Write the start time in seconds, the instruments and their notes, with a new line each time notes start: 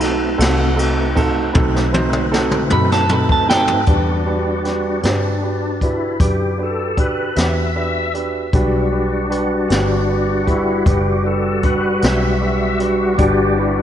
Already playing: fingered electric bass B1, tonewheel organ A3 C4 D#4 B4, clean electric guitar D#4
0.00 upright piano C4 D#4 F#4 A4, snare, ride
0.38 fingered electric bass C2, upright piano C4 D#4 F#4 A4, ride
0.42 snare
0.76 upright piano C4 D#4 F#4 A4, ride
1.16 upright piano C4 D#4 F#4 A4, kick, ride
1.53 fingered electric bass B1, upright piano C4 D#4 F#4 A4, kick, high tom
1.76 snare
1.93 upright piano C4 D#4 F#4 C5, high tom
2.13 mid tom
2.31 upright piano C4 D#4 F#4 A4, snare
2.51 mid tom
2.70 fingered electric bass F#2, upright piano C4 D#4 F#4 A4, clean electric guitar B5, mid tom
2.92 clean electric guitar A5, snare
3.09 upright piano C4 D#4 F#4 A4, clean electric guitar B5, mid tom
3.29 clean electric guitar A5, kick
3.47 upright piano C4 D#4 F#4 A4, clean electric guitar G5, snare
3.68 floor tom
3.86 fingered electric bass E2, tonewheel organ G3 D4 F#4, upright piano D4 F#4 G4 B4, kick, closed hi-hat
4.26 upright piano D4 F#4 G4 B4
4.64 upright piano D4 F#4 G4 B4, snare, closed hi-hat
5.01 fingered electric bass G2, tonewheel organ C#4, upright piano D4 F#4 G4 B4, snare, closed hi-hat
5.06 tonewheel organ D4
5.42 upright piano D4 F#4 G4 B4
5.81 upright piano D4 F#4 G4 B4, tonewheel organ E4, kick, closed hi-hat
6.20 fingered electric bass F#2, upright piano D4 F#4 G4 B4, tonewheel organ G4, kick, closed hi-hat
6.58 upright piano D4 F#4 G4 B4
6.63 tonewheel organ A4
6.97 upright piano D4 F#4 G4 B4, tonewheel organ B4, kick, closed hi-hat
7.36 fingered electric bass E2, upright piano D4 F#4 G4 B4, tonewheel organ E5, snare, closed hi-hat
7.75 upright piano D4 F#4 G4 B4, tonewheel organ E5
8.14 upright piano D4 F#4 G4 B4, closed hi-hat
8.53 fingered electric bass B1, tonewheel organ G3 D4 F#4, upright piano D4 F#4 G4 B4, kick, closed hi-hat
8.92 upright piano D4 F#4 G4 B4
9.30 upright piano D4 F#4 G4 B4, closed hi-hat
9.69 fingered electric bass G1, tonewheel organ C#4, upright piano D4 F#4 G4 B4, snare, closed hi-hat
9.74 tonewheel organ D4
10.08 upright piano D4 F#4 G4 B4
10.46 upright piano D4 F#4 G4 B4, tonewheel organ E4, kick, closed hi-hat
10.85 fingered electric bass F#1, upright piano D4 F#4 G4 B4, tonewheel organ G4, kick, closed hi-hat
11.24 upright piano D4 F#4 G4 B4, tonewheel organ A4
11.63 upright piano D4 F#4 G4 B4, tonewheel organ B4, kick, closed hi-hat
12.02 fingered electric bass B1, upright piano D4 F#4 G4 B4, tonewheel organ E5, snare, closed hi-hat
12.41 upright piano D4 F#4 G4 B4, tonewheel organ E5
12.80 upright piano D4 F#4 G4 B4, closed hi-hat
13.14 tonewheel organ G3 D4 F#4 G4, upright piano D4 F#4
13.18 fingered electric bass G1, upright piano G4 B4, kick, closed hi-hat
13.57 upright piano D4 F#4 G4 B4, tonewheel organ E4